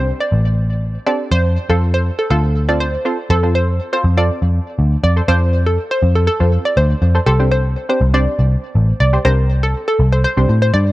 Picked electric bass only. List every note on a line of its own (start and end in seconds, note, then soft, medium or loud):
0.00 0.11 C2 medium
0.32 0.97 A1 medium
1.32 1.56 F2 loud
1.69 2.09 F2 medium
2.31 2.95 D2 loud
3.30 3.78 F2 loud
4.04 4.29 F2 loud
4.42 4.58 F2 medium
4.79 4.95 D2 medium
5.03 5.20 F2 medium
5.28 5.77 F2 loud
6.03 6.27 F2 loud
6.41 6.57 F2 medium
6.77 6.93 D2 medium
7.02 7.18 F2 medium
7.27 7.75 C2 loud
8.01 8.26 C2 loud
8.39 8.55 C2 medium
8.75 8.91 A1 medium
9.00 9.16 C2 medium
9.25 9.73 C2 loud
9.99 10.24 C2 loud
10.37 10.45 C2 medium
10.49 10.71 A2 medium
10.74 10.92 G2 medium